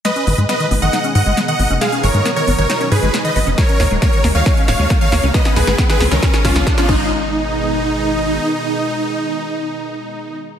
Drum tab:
CC |----------------|----------------|----------------|--------------x-|
HH |xxoxxxoxxxoxxxox|xxoxxxoxxxoxxxox|xxoxxxoxxxoxxxox|xxoxxxoxxxoxxx--|
SD |o---o---o---o---|o---o---o---o---|o-o-o-o-o-o-o-o-|oooooooooooooo--|
T2 |--o----o--------|--o----o---o----|--o----o--------|--o----o---o----|
BD |----------------|----------------|o---o---o---o---|o---o---o-o-o-o-|

CC |----------------|----------------|
HH |----------------|----------------|
SD |----------------|----------------|
T2 |----------------|----------------|
BD |----------------|----------------|